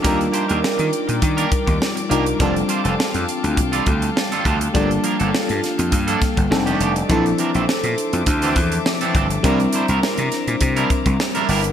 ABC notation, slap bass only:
X:1
M:4/4
L:1/16
Q:"Swing 16ths" 1/4=102
K:F
V:1 name="Slap bass" clef=bass
_E,,2 z E,, z _E, z B,, E,2 z E,, z2 C,,2 | F,,,2 z F,,, z F,, z D,, C,,2 D,,2 z2 D,,2 | G,,,2 z G,,, z G,, z F,, G,,2 z G,,, F,,,2 F,,,2 | B,,,2 z B,,, z B,, z F,, D,,2 E,,2 z2 G,,,2 |
C,,2 z C,, z C, z B,, C,2 z C,, z2 G,,,2 |]